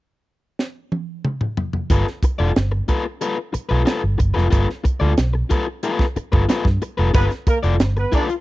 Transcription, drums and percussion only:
0.59 snare
0.92 high tom
1.25 mid tom
1.41 mid tom
1.57 floor tom
1.73 floor tom
1.90 kick, closed hi-hat
2.07 snare
2.23 kick, closed hi-hat
2.56 snare, closed hi-hat
2.88 kick, closed hi-hat
3.21 closed hi-hat
3.54 closed hi-hat
3.87 snare, closed hi-hat
4.20 kick, closed hi-hat
4.38 snare
4.52 kick, closed hi-hat
4.70 snare
4.85 kick, closed hi-hat
5.17 snare, closed hi-hat
5.50 kick, closed hi-hat
5.83 closed hi-hat
5.99 kick, snare
6.16 closed hi-hat
6.33 kick
6.49 snare, closed hi-hat
6.65 kick, snare
6.82 closed hi-hat
7.14 kick, closed hi-hat
7.31 snare, closed hi-hat
7.47 kick, closed hi-hat
7.64 closed hi-hat
7.80 snare, closed hi-hat
7.97 closed hi-hat
8.12 kick, closed hi-hat
8.30 closed hi-hat

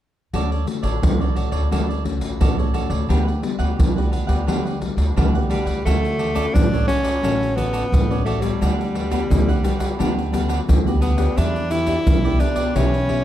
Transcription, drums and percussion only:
0.34 pandeiro, surdo
0.52 pandeiro
0.67 pandeiro
0.83 pandeiro, surdo
1.03 pandeiro, surdo
1.21 pandeiro
1.36 pandeiro, surdo
1.52 pandeiro, surdo
1.72 pandeiro, surdo
1.91 pandeiro
2.05 pandeiro, surdo
2.21 pandeiro
2.41 pandeiro, surdo
2.59 pandeiro
2.74 pandeiro
2.90 pandeiro, surdo
3.10 pandeiro, surdo
3.28 pandeiro
3.43 pandeiro
3.60 pandeiro, surdo
3.80 pandeiro, surdo
3.98 pandeiro
4.13 pandeiro, surdo
4.29 pandeiro, surdo
4.48 pandeiro, surdo
4.67 pandeiro
4.82 pandeiro, surdo
4.98 pandeiro
5.17 pandeiro, surdo
5.35 pandeiro
5.51 pandeiro
5.67 pandeiro, surdo
5.87 pandeiro, shaker, surdo
6.05 pandeiro, shaker
6.19 pandeiro
6.36 pandeiro, shaker, surdo
6.55 pandeiro, shaker, surdo
6.74 pandeiro, shaker
6.89 pandeiro, shaker, surdo
7.04 pandeiro, shaker, surdo
7.24 pandeiro, shaker, surdo
7.43 pandeiro, shaker
7.58 pandeiro, shaker, surdo
7.74 pandeiro, shaker
7.94 pandeiro, shaker, surdo
8.11 pandeiro, shaker
8.26 pandeiro
8.42 pandeiro, shaker, surdo
8.62 pandeiro, shaker, surdo
8.81 pandeiro, shaker
8.95 pandeiro
9.12 pandeiro, shaker, surdo
9.31 pandeiro, shaker, surdo
9.49 pandeiro, shaker
9.64 pandeiro, shaker, surdo
9.80 pandeiro, shaker, surdo
10.00 pandeiro, shaker, surdo
10.19 pandeiro, shaker
10.34 pandeiro, shaker, surdo
10.50 pandeiro, shaker
10.69 pandeiro, shaker, surdo
10.87 pandeiro, shaker
11.02 pandeiro, shaker
11.18 pandeiro, shaker, surdo
11.38 pandeiro, shaker, surdo
11.56 pandeiro, shaker
11.71 pandeiro, shaker
11.87 pandeiro, shaker, surdo
12.07 pandeiro, shaker, surdo
12.25 pandeiro, shaker
12.40 pandeiro, shaker, surdo
12.56 pandeiro, shaker, surdo
12.76 pandeiro, shaker, surdo
12.94 pandeiro, shaker
13.09 pandeiro, surdo

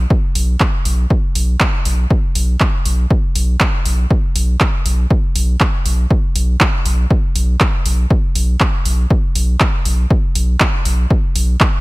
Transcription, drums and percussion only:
0.10 kick
0.35 open hi-hat
0.60 kick, clap
0.85 open hi-hat
1.10 kick
1.35 open hi-hat
1.60 kick, clap
1.85 open hi-hat
2.10 kick
2.35 open hi-hat
2.60 kick, clap
2.85 open hi-hat
3.10 kick
3.35 open hi-hat
3.60 kick, clap
3.86 open hi-hat
4.10 kick
4.36 open hi-hat
4.60 kick, clap
4.86 open hi-hat
5.11 kick
5.36 open hi-hat
5.60 kick, clap
5.86 open hi-hat
6.11 kick
6.36 open hi-hat
6.60 kick, clap
6.86 open hi-hat
7.10 kick
7.36 open hi-hat
7.60 kick, clap
7.86 open hi-hat
8.10 kick
8.35 open hi-hat
8.60 kick, clap
8.85 open hi-hat
9.10 kick
9.35 open hi-hat
9.60 kick, clap
9.85 open hi-hat
10.10 kick
10.35 open hi-hat
10.60 kick, clap
10.85 open hi-hat
11.10 kick
11.36 open hi-hat
11.60 kick, clap

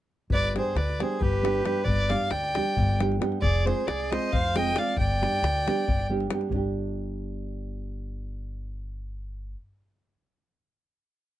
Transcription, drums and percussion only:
0.30 davul low
0.56 davul high
0.77 davul high
0.89 davul high
1.00 davul high
1.22 davul low
1.33 davul high
1.45 davul high
1.55 davul high
1.65 davul high
1.76 davul high
1.86 davul low
2.10 davul high
2.31 davul high
2.44 davul high
2.55 davul high
2.77 davul low
2.89 davul high
3.00 davul high
3.12 davul high
3.22 davul high
3.32 davul high
3.43 davul low
3.67 davul high
3.88 davul high
4.00 davul high
4.12 davul high
4.33 davul low
4.45 davul high
4.56 davul high
4.67 davul high
4.76 davul high
4.87 davul high
4.97 davul low
5.11 davul high
5.23 davul high
5.34 davul high
5.44 davul high
5.56 davul high
5.68 davul high
5.88 davul low
6.00 davul high
6.20 davul high
6.30 davul high
6.41 davul high
6.51 davul low

